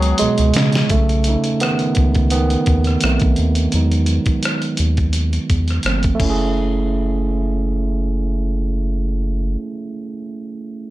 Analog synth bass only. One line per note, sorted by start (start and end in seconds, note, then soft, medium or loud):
0.00 0.14 C#2 medium
0.21 0.28 C#2 soft
0.39 0.53 C#2 medium
0.56 0.85 C#3 loud
0.90 1.36 B1 loud
1.97 2.57 C#2 medium
2.68 2.97 D#2 medium
3.04 3.19 B1 medium
3.22 3.35 B1 medium
3.39 3.68 D#2 medium
3.74 4.19 E2 loud
4.80 5.39 D#2 medium
5.50 5.80 E2 medium
5.85 6.14 G1 medium
6.20 9.57 F#1 medium